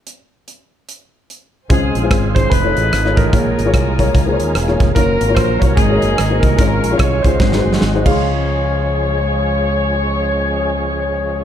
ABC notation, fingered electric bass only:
X:1
M:4/4
L:1/8
Q:"Swing" 1/4=147
K:Db
V:1 name="Fingered electric bass" clef=bass
z8 | D,, B,,, A,,,2 F,,, =A,,, ^G,,, A,,, | B,,, A,,, C,,2 D,, E,, _F,,, =F,,, | G,,, A,,, B,,, C,, A,,, G,,, A,,, C,, |
A,,, B,,, C,, D,, A,,, G,,, A,,, D,,- | D,,8- | D,,8 |]